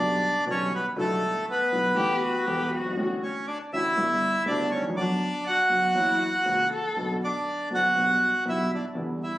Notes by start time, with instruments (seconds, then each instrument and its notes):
Already playing: upright piano B1 D3 G3, bandoneon D4 D5
0.00 upright piano B2 B3 G4
0.46 upright piano B1 B2 D3 G3 B3 G4
0.50 bandoneon C#4 C#5
0.74 bandoneon B3 B4
0.96 upright piano B1 B2 D3 G3 B3 E4, bandoneon A3
1.00 bandoneon A4
1.50 bandoneon B3 B4
1.72 upright piano B1 B2 D3 G3 B3 E4
1.97 upright piano A1 A2 E3 A3 B3 A4, cello G4
2.24 cello F#4
2.47 upright piano E1 E2 E3 A3 B3 A4, cello G4
2.72 cello F#4
2.79 upright piano F#1
2.86 upright piano G1
2.91 upright piano G#1
2.97 upright piano A1 A2 D3 A3 C#4 F#4
3.23 bandoneon C#4 C#5
3.47 bandoneon D4 D5
3.73 upright piano A1 A2 D3 A3 C#4 F#4, bandoneon E4 E5
3.97 upright piano G1 G2 D3 G3 B3 E4
4.46 upright piano D2 D3 G3 B3 E4, bandoneon D5
4.50 bandoneon D4
4.71 bandoneon C#4 C#5
4.77 upright piano D#2
4.84 upright piano E2
4.90 upright piano F2
4.96 upright piano F#2 D3 F#3 B3 F#4, bandoneon D5
5.00 bandoneon D4
5.47 bandoneon F#4 F#5
5.69 upright piano F#2 D3 F#3 B3 F#4
5.94 upright piano F#2 E3 F#3 A#3 C#4 F#4, cello E4
6.20 cello F#4
6.45 upright piano C#2 C#3 E3 A#3 C#4 F#4
6.71 cello A4
6.96 upright piano B1 B2 D3 A3 B3 F#4
7.24 bandoneon D4 D5
7.70 upright piano F#1 F#2 D3 A3 B3 F#4, bandoneon F#4
7.75 bandoneon F#5
7.95 upright piano B1 B2 D3 G3 B3 F#4
8.45 upright piano B1 B2 D3 G3 B3 F#4, bandoneon E4
8.50 bandoneon E5
8.74 bandoneon D4 D5
8.95 upright piano E2 D3 E3 G3 B3 E4
9.24 bandoneon E4 E5